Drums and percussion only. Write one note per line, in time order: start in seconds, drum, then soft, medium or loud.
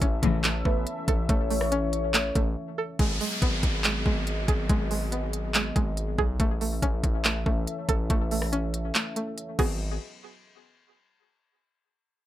0.02 kick loud
0.02 closed hi-hat medium
0.23 kick medium
0.23 closed hi-hat medium
0.44 clap loud
0.44 closed hi-hat medium
0.65 kick medium
0.87 closed hi-hat medium
1.08 kick loud
1.08 closed hi-hat medium
1.29 kick loud
1.29 closed hi-hat medium
1.50 open hi-hat medium
1.61 cross-stick medium
1.72 closed hi-hat medium
1.93 closed hi-hat medium
2.14 clap loud
2.14 closed hi-hat medium
2.35 kick medium
2.35 closed hi-hat medium
2.99 kick loud
2.99 closed hi-hat medium
3.21 open hi-hat medium
3.42 kick loud
3.42 closed hi-hat medium
3.63 kick medium
3.63 closed hi-hat medium
3.84 clap loud
3.84 closed hi-hat medium
4.06 kick medium
4.27 closed hi-hat medium
4.48 kick loud
4.48 closed hi-hat medium
4.69 kick loud
4.69 closed hi-hat medium
4.91 open hi-hat medium
5.12 closed hi-hat medium
5.33 closed hi-hat medium
5.54 clap loud
5.54 closed hi-hat medium
5.76 kick medium
5.76 closed hi-hat medium
5.97 closed hi-hat medium
6.18 kick loud
6.40 kick loud
6.40 closed hi-hat medium
6.61 open hi-hat medium
6.82 kick loud
6.82 closed hi-hat medium
7.04 kick medium
7.04 closed hi-hat medium
7.25 clap loud
7.25 closed hi-hat medium
7.46 kick medium
7.67 closed hi-hat medium
7.89 kick loud
7.89 closed hi-hat medium
8.10 kick loud
8.10 closed hi-hat medium
8.31 open hi-hat medium
8.42 cross-stick medium
8.53 closed hi-hat medium
8.74 closed hi-hat medium
8.95 clap loud
8.95 closed hi-hat medium
9.16 closed hi-hat medium
9.38 closed hi-hat medium
9.59 kick loud
9.59 crash medium